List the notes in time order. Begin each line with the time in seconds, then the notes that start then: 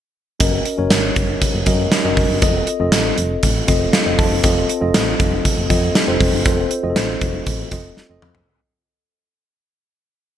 0.40 F#1 C#4 F#4 A#4 D#5, kick, closed hi-hat
0.65 closed hi-hat
0.77 F#1 C#4 F#4 A#4 C#5
0.90 G#1, snare, closed hi-hat
1.16 F#1, kick, closed hi-hat
1.42 kick, closed hi-hat
1.54 F#1
1.66 F#2 C#4 F#4 A#4 D#5, kick, closed hi-hat
1.92 snare, closed hi-hat
2.04 F#1 C#4 F#4 A#4 D#5
2.17 F1, kick, open hi-hat
2.30 F#1
2.42 F1 C4 F4 A4 D#5, kick, closed hi-hat
2.67 closed hi-hat
2.79 F1 C4 F4 A4 D#5
2.92 A1, snare, closed hi-hat
3.18 F1, closed hi-hat
3.43 A1, kick, closed hi-hat
3.68 F1 C4 F4 A4 D#5, kick, closed hi-hat
3.93 F5, snare, closed hi-hat
4.05 F1 C4 F4 A4 D#5
4.18 F1 A5, kick, open hi-hat
4.31 F#1
4.43 F1 C4 F4 A4 D#5, kick, closed hi-hat
4.69 closed hi-hat
4.80 F1 C4 F4 A4 D#5
4.94 A1, snare, closed hi-hat
5.20 F1, kick, closed hi-hat
5.45 kick, closed hi-hat
5.57 F1
5.69 F2 C4 F4 A4 D#5, kick, closed hi-hat
5.95 snare, closed hi-hat
6.07 F1 C4 F4 A4 C5
6.20 F1, kick, open hi-hat
6.33 F#1
6.45 F1 C4 F4 A4 C5, kick, closed hi-hat
6.71 closed hi-hat
6.83 F1 C4 F4 F#4 D#5
6.90 A4
6.96 A1, snare, closed hi-hat
7.21 F1, kick, closed hi-hat
7.46 A1, kick, closed hi-hat
7.71 F1 C4 F4 A4 D#5, kick, closed hi-hat
7.97 F1, snare
8.09 F1 C4 F4 A4 D#5
8.22 F2, mid tom
8.35 floor tom